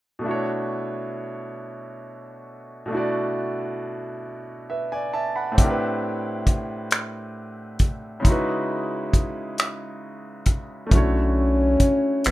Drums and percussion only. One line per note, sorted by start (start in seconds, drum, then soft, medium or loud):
5.58 kick medium
5.58 closed hi-hat medium
6.47 kick medium
6.47 closed hi-hat medium
6.91 finger snap medium
6.91 closed hi-hat medium
7.79 kick medium
7.79 closed hi-hat medium
8.25 kick loud
8.25 closed hi-hat medium
9.13 kick medium
9.13 closed hi-hat medium
9.58 finger snap medium
9.58 closed hi-hat medium
10.46 kick medium
10.46 closed hi-hat medium
10.91 kick loud
10.91 closed hi-hat medium
11.80 kick medium
11.80 closed hi-hat medium
12.24 finger snap medium
12.24 closed hi-hat medium